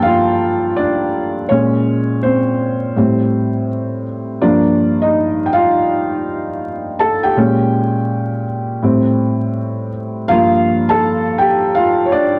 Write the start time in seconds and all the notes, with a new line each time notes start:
Already playing: G2 F3 A#3 F4 G4 A4 F5 G5 G#5 A5
0.02 F4 F5
0.76 D4 D5
1.49 A#2 G#3 C#4 C#5
2.23 C4 C5
2.96 A2 G3 C4
4.42 G2 F3 A#3 D4 D5
5.02 D#4 D#5
5.46 G5
5.53 F4 F5
6.99 A4 A5
7.23 G4 G5
7.37 A#2 G#3 C#4
8.82 A2 G3 C4
10.28 G2 F3 A#3 F4 F5
10.89 A4 A5
11.38 G4 G5
11.75 F4 F5
12.06 C#5
12.12 D4 D5